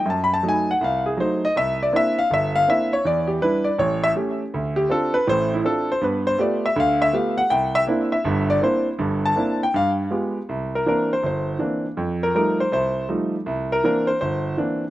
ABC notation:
X:1
M:4/4
L:1/8
Q:"Swing" 1/4=161
K:Cmix
V:1 name="Grand piano"
(3a =b a _a ^f =f _A c ^d | e d e f e f e _d | d G =B d ^c e z2 | z G A =B c E A c |
=B c d e f e f ^f | g e z e2 d c z | z a2 g f z3 | z B B c c2 z2 |
z B B c c2 z2 | z B B c c2 z2 |]
V:2 name="Grand piano"
^F,,2 [^F,A,^D] z C,,2 [F,A,D] z | C,,2 [B,CDE] z G,,,2 [B,CDE] z | E,,2 [G,DE] z A,,,2 [A,^CG] z | D,,2 [CDF] z [A,,,A,,]2 [CDF] z |
[G,,=B,]2 [A,B,FG] z [D,,D,]2 [A,B,FG] z | C,,2 [B,CDE] z [G,,,G,,]2 [B,CDE] z | [G,,,G,,]2 [B,CDE] z G,,2 [_A,=B,FG] z | C,,2 [E,B,CD] z G,,,2 [E,B,CD] z |
F,,2 [F,G,A,_E] z C,,2 [F,G,A,E] z | C,,2 [E,B,CD] z G,,,2 [E,B,CD] z |]